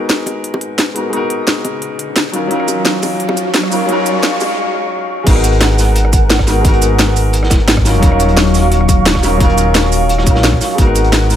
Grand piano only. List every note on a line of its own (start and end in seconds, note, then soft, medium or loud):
0.00 0.92 G#3 medium
0.00 0.93 B3 medium
0.00 0.94 D#4 medium
0.00 0.95 F#4 medium
0.00 0.95 A#4 medium
0.94 1.08 G#3 medium
0.94 1.10 B3 medium
0.94 1.11 D#4 medium
0.94 1.11 F#4 medium
0.94 1.12 A#4 medium
1.09 2.30 G#3 medium
1.09 2.31 B3 medium
1.09 2.32 D#4 medium
1.14 2.32 F#4 medium
1.14 2.33 A#4 loud
2.32 2.46 F#3 medium
2.32 2.47 C#4 medium
2.32 2.49 D#4 medium
2.32 2.49 F4 medium
2.32 2.50 A#4 medium
2.47 3.68 F#3 medium
2.47 3.69 C#4 medium
2.47 3.69 D#4 medium
2.52 3.70 F4 medium
2.52 3.71 A#4 loud
3.70 3.84 F#3 medium
3.70 3.86 C#4 medium
3.70 3.87 D#4 medium
3.70 3.87 F4 medium
3.70 3.88 A#4 medium
3.85 4.56 F#3 medium
3.85 4.57 C#4 medium
3.85 4.58 D#4 medium
3.91 4.59 F4 medium
3.91 4.59 A#4 loud
5.23 6.44 G#3 medium
5.23 6.45 B3 medium
5.23 6.45 D#4 medium
5.28 6.46 F#4 medium
5.28 6.47 A#4 loud
6.46 6.60 G#3 medium
6.46 6.61 B3 medium
6.46 6.63 D#4 medium
6.46 6.63 F#4 medium
6.46 6.64 A#4 medium
6.61 7.82 G#3 medium
6.61 7.82 B3 medium
6.61 7.83 D#4 medium
6.66 7.84 F#4 medium
6.66 7.85 A#4 loud
7.84 7.98 F#3 medium
7.84 8.00 C#4 medium
7.84 8.01 D#4 medium
7.84 8.01 F4 medium
7.84 8.01 A#4 medium
7.99 9.20 F#3 medium
7.99 9.21 C#4 medium
7.99 9.21 D#4 medium
8.04 9.22 F4 medium
8.04 9.23 A#4 loud
9.22 9.35 F#3 medium
9.22 9.37 C#4 medium
9.22 9.39 D#4 medium
9.22 9.39 F4 medium
9.22 9.39 A#4 medium
9.37 10.22 F#3 medium
9.37 10.23 C#4 medium
9.37 10.25 D#4 medium
9.42 10.26 F4 medium
9.42 10.27 A#4 loud
10.23 10.75 F#3 medium
10.23 10.76 C#4 medium
10.23 10.76 D#4 medium
10.28 10.77 F4 medium
10.28 10.78 A#4 medium
10.75 11.36 G#3 medium
10.75 11.36 B3 medium
10.75 11.36 D#4 medium
10.80 11.36 F#4 medium
10.80 11.36 A#4 loud